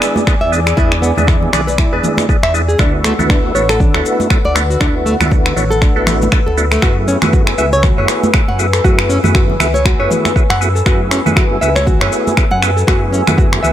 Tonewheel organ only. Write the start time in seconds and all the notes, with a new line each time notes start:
Already playing: G#3 B3 D4 E4 G#4
0.27 G#3 B3 D4 E4 G#4
0.52 G#3 B3 D4 E4 G#4
0.78 G#3 B3 D4 E4 G#4
1.18 G#3 B3 D4 E4 G#4
1.53 G#3 B3 D4 E4 G#4
1.93 G#3 B3 D4 E4 G#4
2.29 G#3 B3 D4 E4 G#4
2.54 G#3 B3 D4 E4 G#4
2.80 A3 B3 D4 E4 F#4
3.19 A3 B3 D4 E4 F#4
3.55 A3 B3 D4 E4 F#4
3.94 A3 B3 D4 E4 F#4
4.30 A3 B3 D4 E4 F#4
4.55 A3 B3 D4 E4 F#4
4.81 A3 B3 D4 E4 F#4
5.20 A3 B3 D4 E4 F#4
5.56 A3 B3 D4 E4 F#4
5.96 A3 B3 D4 E4 F#4
6.32 A3 B3 D4 E4 F#4
6.57 A3 B3 D4 E4 F#4
6.83 A3 B3 E4 F#4 G#4
7.22 A3 B3 E4 F#4 G#4
7.58 A3 B3 E4 F#4 G#4
7.98 A3 B3 E4 F#4 G#4
8.34 A3 B3 E4 F#4 G#4
8.59 A3 B3 E4 F#4 G#4
8.84 A3 B3 E4 F#4 G#4
9.24 A3 B3 E4 F#4 G#4
9.60 A3 B3 E4 F#4 G#4
10.00 A3 B3 E4 F#4 G#4
10.36 A3 B3 E4 F#4 G#4
10.61 A3 B3 E4 F#4 G#4
10.86 A3 B3 E4 F#4 G#4
11.26 A3 B3 E4 F#4 G#4
11.62 A3 B3 E4 F#4 G#4
12.01 A3 B3 E4 F#4 G#4
12.37 A3 B3 E4 F#4 G#4
12.63 A3 B3 E4 F#4 G#4
12.88 A3 B3 E4 F#4 G#4
13.28 A3 B3 E4 F#4 G#4
13.63 A3 B3 E4 F#4 G#4